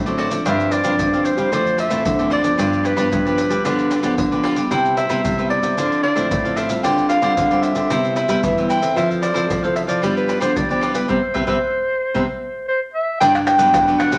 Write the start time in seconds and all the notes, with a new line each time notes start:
Already playing: A2 A4
0.06 F#3 C4 D4 A4 C5 D5, pandeiro, maracas, surdo
0.18 F#4 A4 C5 D5, pandeiro, surdo
0.30 F3 C4 D4 A4 C5 D5, pandeiro, maracas
0.45 G2 D4 G4 C5 E5 F5, pandeiro, maracas, surdo
0.60 pandeiro, maracas, surdo
0.71 D4 G4 C5 D5 F5, pandeiro, maracas
0.83 G2 F3 C4 D4 G4 C5 F5, pandeiro, maracas
0.99 G2 D3, pandeiro, maracas, surdo
1.12 F3 C4 D4 G4 C5 F5, pandeiro, maracas
1.25 C5, pandeiro, maracas
1.37 G3 G4 C5 F5, pandeiro, maracas, surdo
1.51 F2 E3 A3 C4 F4 A4 C5 D5, pandeiro, maracas, surdo
1.67 pandeiro, maracas
1.78 F4 A4 C5 D5 E5, pandeiro, maracas
1.90 A2 E3 A3 C4 F4 A4 C5 D5, pandeiro, maracas, surdo
2.05 F2 D3, pandeiro, maracas, surdo
2.18 E3 A3 C4 A4 C5 D5, pandeiro, maracas, surdo
2.30 F4 A4 C5 D5, pandeiro, surdo
2.43 F3 B3 D4 A4 C5 D5, pandeiro, maracas
2.57 G2 F4 G4 B4 D5, pandeiro, maracas, surdo
2.73 pandeiro, maracas, surdo
2.83 F4 G4 B4 D5, pandeiro, maracas
2.96 G2 F3 B3 D4 F4 G4 B4 D5, pandeiro, maracas
3.12 G2 D3, pandeiro, maracas, surdo
3.25 F3 B3 D4 G4 B4 D5, pandeiro, maracas
3.38 pandeiro, maracas
3.49 G3 G4 B4 D5, pandeiro, maracas, surdo
3.64 G2 D3 F3 B3 D4 F4 G4 B4 D5, pandeiro, maracas, surdo
3.79 pandeiro, maracas
3.90 F4 G4 B4 D5, pandeiro, maracas
4.02 D3 F3 B3 D4 F4 G4 B4 D5, pandeiro, maracas, surdo
4.18 D3, pandeiro, maracas, surdo
4.31 F3 B3 D4 G4 B4 D5, pandeiro, maracas, surdo
4.43 F4 G4 B4 D5, pandeiro
4.56 G3 B3 E4 G4 B4 D5, pandeiro, maracas
4.71 C3 E4 B4 C5 E5 G5, pandeiro, maracas, surdo
4.85 pandeiro, maracas, surdo
4.97 E4 B4 C5 E5, pandeiro, maracas
5.09 C3 G3 B3 E4 B4 C5 E5, pandeiro, maracas
5.24 G2 C3, pandeiro, maracas, surdo
5.37 G3 B3 E4 B4 C5 E5, pandeiro, maracas
5.50 D5, pandeiro
5.62 C3 B4 C5 E5, pandeiro, maracas, surdo
5.77 D3 F3 C4 D4 E4 A4 C5 F5, pandeiro, maracas, surdo
5.92 pandeiro, maracas
6.03 D4 A4 C5 D5 F5, pandeiro
6.15 A2 F3 C4 D4 E4 A4 C5 F5, pandeiro, maracas, surdo
6.31 A2, pandeiro, maracas, surdo
6.44 F3 C4 E4 A4 C5 F5, pandeiro, maracas, surdo
6.56 D4 A4 C5 E5 F5, pandeiro, maracas, surdo
6.69 G3 C4 F4 A4 F5, pandeiro, maracas
6.83 D3 F4 G4 C5 D5 G5, pandeiro, maracas, surdo
6.98 pandeiro, maracas, surdo
7.09 F4 G4 C5 D5 F5, pandeiro, maracas
7.22 D3 G3 C4 F4 G4 C5 D5, pandeiro, maracas
7.37 D3, pandeiro, maracas, surdo
7.51 G3 C4 F4 G4 C5 D5, pandeiro, maracas
7.61 E5, pandeiro, maracas
7.75 D3 G4 C5 D5, pandeiro, maracas, surdo
7.90 C3 G3 B3 E4 B4 C5 E5, pandeiro, maracas, surdo
8.04 pandeiro, maracas
8.16 E4 B4 C5 E5, pandeiro, maracas
8.28 G3 B3 E4 B4 C5 E5, pandeiro, maracas, surdo
8.43 G2 E3, pandeiro, maracas, surdo
8.57 G3 B3 E4 B4 C5 E5, pandeiro, maracas, surdo
8.69 E4 B4 C5 E5 G5, pandeiro, maracas
8.82 C4 E4 A4 B4 C5 E5, pandeiro, maracas
8.96 F3 E4 A4 C5 E5 F5, pandeiro, maracas, surdo
9.11 pandeiro, maracas, surdo
9.22 E4 A4 C5 D5 F5, pandeiro, maracas
9.34 F3 C4 E4 A4 C5 F5, pandeiro, maracas
9.50 C3 F3, pandeiro, maracas, surdo
9.62 C4 E4 A4 C5 F5, pandeiro, maracas
9.76 E5, pandeiro, maracas
9.87 F3 A4 C5 D5 F5, pandeiro, maracas, surdo
10.02 G2 F3 G3 B3 D4 F4 G4 B4 D5, pandeiro, maracas, surdo
10.17 B4, pandeiro, maracas
10.28 F4 G4 B4 D5, pandeiro, maracas
10.40 D3 F3 B3 D4 F4 G4 B4 C5 D5, pandeiro, maracas, surdo
10.56 D3 G3 D5, pandeiro, maracas, surdo
10.69 F3 B3 D4 G4 B4 D5, pandeiro, maracas, surdo
10.81 F4 G4 B4 D5, pandeiro, maracas
10.94 G3 B3 E4 G4 B4 D5, pandeiro, maracas
11.08 C3 G3 B3 C4 B4 C5 E5, surdo
11.34 C3 G3 B3 C4 B4 C5 E5, surdo
11.47 C3 G3 B3 C4 B4 C5 E5, surdo
12.14 C3 G3 B3 C4 B4 C5 E5, surdo
12.68 C5
12.93 E5
13.20 G2 D4 G4 B4 F#5 G5, pandeiro, maracas, surdo
13.34 G4 B4 F#5, pandeiro, tamborim, maracas, surdo
13.46 G5, muted cavaquinho stroke, pandeiro, tamborim, maracas
13.58 G2 F#3 B3 D4 G4 B4 F#5, pandeiro, maracas
13.74 G2 D3, pandeiro, tamborim, maracas, surdo
13.87 F#3 B3 D4 G4 B4 F#5, pandeiro, maracas
13.99 D4 G4 B4 F#5, pandeiro, tamborim, maracas
14.11 C3 G4 B4 F#5, pandeiro, maracas, surdo